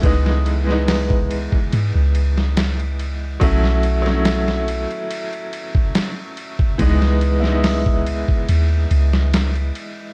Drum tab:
RD |x-x---x-x-x-xxx-|x-x-x-xxxxx-x-x-|x-x---x-x-x-xxx-|
HH |----o-----------|----------------|----o-----------|
SD |-o-oo------oo---|-o-ooo------o---|-o-oo------oo---|
BD |o----o-o--------|o----------o---o|o----o-o--------|